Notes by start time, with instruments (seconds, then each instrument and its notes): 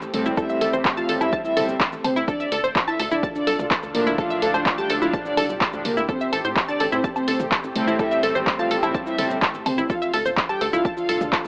Already playing: analog synth pad A3 C4 G4
0.02 analog synth bass A1, shaker
0.14 analog polysynth A2 G3 C4, soft synth lead A3, violin section A4, mid tom, open hi-hat
0.26 analog synth bass A1, synth arpeggio sound E4, shaker
0.37 analog polysynth A2 G3 C4, soft synth lead E4, synth arpeggio sound A4, violin section E5, kick, low woodblock, shaker
0.49 synth arpeggio sound E5, shaker
0.61 analog synth bass A1, synth arpeggio sound A4, open hi-hat
0.73 analog synth bass A1, synth arpeggio sound C5, shaker
0.85 kick, clap, shaker
0.97 soft synth lead F4, violin section F5, synth arpeggio sound A5, shaker
1.09 analog synth bass A1, synth arpeggio sound A4, open hi-hat
1.21 analog synth bass A1, soft synth lead E4, synth arpeggio sound E4, violin section E5, low woodblock, shaker
1.33 synth arpeggio sound A5, kick, shaker
1.45 soft synth lead E4, violin section E5, shaker
1.56 analog synth bass G1, analog polysynth A2 G3 C4, synth arpeggio sound A4, mid tom, open hi-hat
1.68 analog synth bass G1, shaker
1.80 synth arpeggio sound A5, kick, clap, shaker
1.92 analog synth bass A1, shaker
2.04 soft synth lead C4, violin section C5, mid tom, open hi-hat, low woodblock
2.16 analog synth bass A1, synth arpeggio sound E4, shaker
2.28 analog synth pad D3 D4 F4 A4, soft synth lead D4, synth arpeggio sound A4, violin section D5, kick, shaker
2.40 synth arpeggio sound E5, shaker
2.52 analog synth bass D2, synth arpeggio sound A4, open hi-hat
2.64 analog synth bass D1, synth arpeggio sound C5, shaker
2.75 kick, clap, shaker
2.88 soft synth lead E4, violin section E5, synth arpeggio sound A5, low woodblock, shaker
2.99 analog synth bass D2, synth arpeggio sound A4, open hi-hat
3.11 analog synth bass D1, soft synth lead D4, synth arpeggio sound E4, violin section D5, shaker
3.23 synth arpeggio sound A5, kick, shaker
3.35 soft synth lead D4, violin section D5, shaker
3.47 analog synth bass C2, synth arpeggio sound A4, open hi-hat
3.59 analog synth bass D2, mid tom, shaker
3.71 synth arpeggio sound A5, kick, clap, low woodblock, shaker
3.83 analog synth bass D2, shaker
3.95 analog polysynth A2 F3 D4, soft synth lead A#3, violin section A#4, mid tom, open hi-hat
4.06 analog synth bass D2, synth arpeggio sound E4, shaker
4.18 analog polysynth A2 F3 D4, soft synth lead F4, analog synth pad G4, synth arpeggio sound A4, violin section F5, kick, shaker
4.30 synth arpeggio sound E5, shaker
4.42 analog synth bass D2, synth arpeggio sound A4, open hi-hat
4.54 analog synth bass D2, synth arpeggio sound C5, low woodblock, shaker
4.66 kick, clap, shaker
4.78 soft synth lead G4, violin section G5, synth arpeggio sound A5, shaker
4.90 analog synth bass D2, synth arpeggio sound A4, open hi-hat
5.02 analog synth bass D2, synth arpeggio sound E4, soft synth lead F4, violin section F5, shaker
5.13 synth arpeggio sound A5, kick, shaker
5.26 soft synth lead D4, violin section D5, shaker
5.37 analog synth bass C2, synth arpeggio sound A4, mid tom, open hi-hat, low woodblock
5.49 analog synth bass C2, shaker
5.61 synth arpeggio sound A5, kick, clap, shaker
5.73 analog synth bass D2, analog polysynth A2 F3 D4, shaker
5.85 soft synth lead A#3, violin section A#4, mid tom, open hi-hat
5.97 analog synth bass D2, synth arpeggio sound E4, shaker
6.09 analog synth pad A3 C4, soft synth lead C4, synth arpeggio sound A4, violin section C5, kick, shaker
6.21 synth arpeggio sound E5, shaker
6.33 analog synth bass A1, synth arpeggio sound A4, open hi-hat, low woodblock
6.44 analog synth bass A2, synth arpeggio sound C5, shaker
6.56 kick, clap, shaker
6.68 soft synth lead D4, violin section D5, synth arpeggio sound A5, shaker
6.80 analog synth bass A1, synth arpeggio sound A4, open hi-hat
6.92 analog synth bass A2, soft synth lead C4, synth arpeggio sound E4, violin section C5, shaker
7.04 synth arpeggio sound A5, kick, shaker
7.16 soft synth lead C4, violin section C5, low woodblock, shaker
7.28 analog synth bass G1, synth arpeggio sound A4, open hi-hat
7.40 analog synth bass A1, mid tom, shaker
7.52 synth arpeggio sound A5, kick, clap, shaker
7.64 analog synth bass A1, shaker
7.76 analog polysynth A2 G3 C4, soft synth lead A3, violin section A4, mid tom, open hi-hat
7.87 analog synth bass A1, synth arpeggio sound E4, shaker
7.99 analog polysynth A2 G3 C4, soft synth lead E4, synth arpeggio sound A4, violin section E5, kick, low woodblock, shaker
8.11 synth arpeggio sound E5, shaker
8.23 analog synth bass A1, synth arpeggio sound A4, open hi-hat
8.35 analog synth bass A1, synth arpeggio sound C5, shaker
8.47 kick, clap, shaker
8.59 soft synth lead F4, violin section F5, synth arpeggio sound A5, shaker
8.71 analog synth bass A1, synth arpeggio sound A4, open hi-hat
8.83 analog synth bass A1, soft synth lead E4, synth arpeggio sound E4, violin section E5, low woodblock, shaker
8.95 synth arpeggio sound A5, kick, shaker
9.07 soft synth lead E4, violin section E5, shaker
9.18 analog synth bass G1, analog polysynth A2 G3 C4, synth arpeggio sound A4, mid tom, open hi-hat
9.30 analog synth bass G1, shaker
9.42 synth arpeggio sound A5, kick, clap, shaker
9.54 analog synth bass A1, shaker
9.66 soft synth lead C4, violin section C5, mid tom, open hi-hat, low woodblock
9.78 analog synth bass A1, synth arpeggio sound E4, shaker
9.90 analog synth pad D3 D4 F4 A4, soft synth lead F4, synth arpeggio sound A4, violin section F5, kick, shaker
10.02 synth arpeggio sound E5, shaker
10.13 analog synth bass D2, synth arpeggio sound A4, open hi-hat
10.25 analog synth bass D1, synth arpeggio sound C5, shaker
10.37 kick, clap, shaker
10.49 soft synth lead G4, violin section G5, synth arpeggio sound A5, low woodblock, shaker
10.61 analog synth bass D2, synth arpeggio sound A4, open hi-hat
10.73 analog synth bass D1, synth arpeggio sound E4, soft synth lead F4, violin section F5, shaker
10.85 synth arpeggio sound A5, kick, shaker
10.97 soft synth lead F4, violin section F5, shaker
11.09 analog synth bass C2, synth arpeggio sound A4, open hi-hat
11.21 analog synth bass D2, mid tom, shaker
11.33 synth arpeggio sound A5, kick, clap, low woodblock, shaker
11.45 analog synth bass D2, shaker